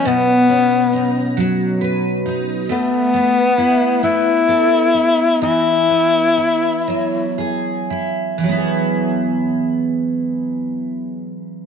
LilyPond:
<<
  \new Staff \with { instrumentName = "Tenor saxophone" } { \time 6/8 \key e \major \tempo 4. = 42 b4. r4. | b4. e'4. | e'2 r4 | r2. | }
  \new Staff \with { instrumentName = "Steel-string acoustic guitar" } { \time 6/8 \key e \major b,8 cis'8 dis'8 fis8 b'8 dis'8 | a8 b8 e'8 b8 a'8 e'8 | e8 b8 e'8 fis8 gis'8 e'8 | <e fis b e' gis'>2. | }
>>